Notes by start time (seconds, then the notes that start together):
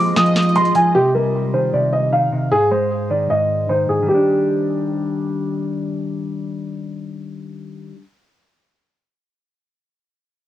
Already playing: F3 G#3 C4 D6
0.16 F3 D#5 D#6, snare, closed hi-hat
0.26 closed hi-hat
0.36 snare, closed hi-hat
0.42 closed hi-hat
0.49 closed hi-hat
0.56 G#3 C6, closed hi-hat
0.65 closed hi-hat
0.75 F3 G#5, closed hi-hat
0.95 C3 G4
1.14 G3 A#4
1.54 D#3 C5
1.73 C3 D5
1.93 D#5
2.12 D#3 F5
2.32 C3
2.52 G#2 G#4
2.71 G#3 C5
3.10 D#3 D5
3.30 G#2 D#5
3.69 D#3 C5
3.89 G#2 G#4
4.02 D#3 G3
4.08 C4 G4
4.15 D4